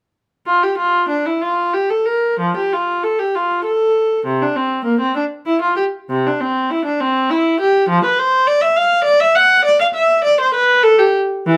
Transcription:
0.46 F4
0.63 G4
0.78 F4
1.09 D4
1.26 E4
1.41 F4
1.74 G4
1.89 A4
2.05 A#4
2.40 F3
2.57 G4
2.72 F4
3.03 A4
3.19 G4
3.35 F4
3.65 A4
4.26 C3
4.41 D4
4.56 C4
4.85 A#3
5.00 C4
5.16 D4
5.46 E4
5.62 F4
5.76 G4
6.10 C3
6.27 D4
6.40 C4
6.70 E4
6.85 D4
7.00 C4
7.30 E4
7.60 G4
7.89 F3
8.04 B4
8.19 C5
8.47 D5
8.61 E5
8.76 F5
9.04 D5
9.20 E5
9.35 F#5
9.65 D5
9.80 F5
9.94 E5
10.24 D5
10.41 C5
10.54 B4
10.83 A4
10.98 G4
11.46 E3

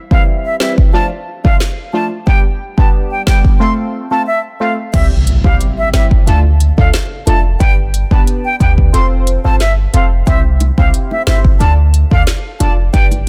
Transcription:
0.11 E3 G3 C4 E4 F5, kick
0.45 E5
0.60 E3 G3 C4 E4 E5, snare
0.78 kick
0.93 F3 A3 D4 F4 A5
1.44 F3 A3 D4 F4 F5, kick
1.60 snare
1.93 F3 A3 D4 F4 A5
2.27 G3 B3 D4 G4 G5, kick
2.78 G3 B3 D4 G4 A5, kick
3.11 G5
3.26 G3 B3 D4 G4 G5, kick, snare
3.44 kick
3.60 A3 C4 F4 A4 C6
4.11 A3 C4 F4 A4 A5
4.27 E5
4.60 A3 C4 F4 A4 F5
4.93 C2 G3 C4 E4 G4 E5, kick, closed hi-hat, crash, impact
5.27 closed hi-hat
5.44 C2 G3 C4 E4 G4 F5, kick
5.61 closed hi-hat
5.78 E5
5.93 G1 G3 C4 E4 G4 E5, snare, closed hi-hat
6.11 kick
6.27 D2 A3 D4 F4 A4 A5, closed hi-hat
6.60 closed hi-hat
6.78 D2 A3 D4 F4 A4 F5, kick
6.93 snare, closed hi-hat
7.27 F1 A3 D4 F4 A4 A5, closed hi-hat
7.60 G1 B3 D4 G4 B4 G5, kick, closed hi-hat
7.94 closed hi-hat
8.11 G1 B3 D4 G4 B4 A5, kick
8.27 closed hi-hat
8.45 G5
8.60 D2 B3 D4 G4 B4 G5, kick, closed hi-hat
8.78 kick
8.93 F1 C4 F4 A4 C5 C6, closed hi-hat
9.27 closed hi-hat
9.44 G1 C4 F4 A4 C5 A5
9.60 E5, snare, closed hi-hat
9.93 F1 C4 F4 A4 C5 F5, closed hi-hat
10.27 C2 C4 E4 G4 C5 E5, kick, closed hi-hat, high bongo
10.60 closed hi-hat, high bongo
10.78 C2 C4 E4 G4 C5 F5, kick, high bongo
10.94 closed hi-hat
11.11 E5, high bongo
11.27 G1 C4 E4 G4 C5 E5, snare, closed hi-hat, high bongo
11.45 kick
11.60 D2 D4 F4 A4 D5 A5, closed hi-hat, high bongo
11.94 closed hi-hat
12.11 D2 D4 F4 A4 D5 F5, kick
12.27 snare, closed hi-hat
12.60 F1 D4 F4 A4 D5 A5, closed hi-hat, low bongo
12.93 G1 D4 G4 B4 D5 G5, kick, closed hi-hat, high bongo
13.11 closed hi-hat, high bongo

